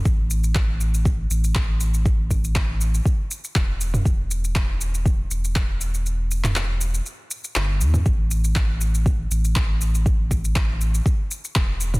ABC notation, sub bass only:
X:1
M:4/4
L:1/8
Q:"Swing 16ths" 1/4=120
K:Clyd
V:1 name="Sub bass" clef=bass
A,,,4- A,,, A,,,3- | A,,,4 z2 E,,,2 | E,,,4- E,,, E,,,3- | E,,,4 z2 G,,, E,, |
A,,,4- A,,, A,,,3- | A,,,4 z2 E,,,2 |]